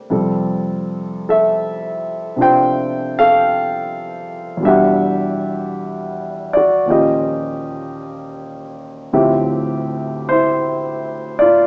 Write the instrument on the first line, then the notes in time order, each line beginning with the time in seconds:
grand piano
Already playing: A3 A#3 D4 E4 G4 A4
0.10 F2 C3 G3 C4 A4
1.29 A4 E5
2.36 C3 F3 D4 F4
2.41 C5 G5
3.19 A4 F5
4.57 E2 B2
4.63 G3 D4 E5
4.67 G4 F#5
6.53 F#4 D5
6.85 D#2 A#2 F3 C#4
6.90 G4 D#5
9.13 D2 A2 F3 C4 G4 E5
10.29 E4 C5
11.39 F4 D5